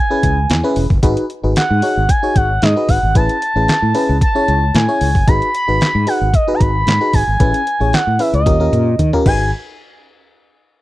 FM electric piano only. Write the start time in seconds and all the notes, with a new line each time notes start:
0.10 C#4 E4 G#4 B4
0.63 C#4 E4 G#4 B4
1.03 D#4 F#4 G#4 B4
1.43 D#4 F#4 G#4 B4
1.82 D#4 F#4 G#4 C#5
2.23 D#4 F#4 G#4 C#5
2.76 D#4 F#4 G#4 B4
3.15 C#4 E4 G#4 B4
3.56 C#4 E4 G#4 B4
3.94 C#4 E4 G#4 B4
4.35 C#4 E4 G#4 C#5
4.88 C#4 E4 G#4 C#5
5.27 D#4 F#4 G#4 B4
5.68 D#4 F#4 G#4 B4
6.07 D#4 F#4 G#4 B4
6.48 D#4 F#4 G#4 B4
7.01 D#4 F#4 G#4 B4
7.40 C#4 E4 G#4 B4
7.80 C#4 E4 G#4 C#5
8.19 C#4 E4 G#4 B4
8.46 C#4 F4 G4 A#4
8.60 C#4 F4 G4 A#4
9.13 C#4 F4 G4 A#4
9.26 D#4 F#4 G#4 B4